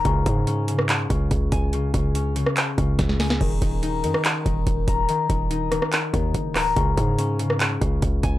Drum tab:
CC |----------------|----------------|x---------------|----------------|
HH |x-x-x-x-x-x-x-x-|x-x-x-x-x-x-x-o-|--x-x-x-x-x-x-x-|x-x-x-x-x-x-x-o-|
CP |--------x-------|--------x-------|--------x-------|--------x-----x-|
SD |-------r--------|-------r----oooo|-------r--------|------rr------r-|
BD |o-o-------o-o-o-|--o-------o-o---|o-o-------o-o-o-|--o-------o-o---|

CC |----------------|
HH |x-x-x-x-x-x-x-x-|
CP |--------x-------|
SD |-------r--------|
BD |o-o-------o-o-o-|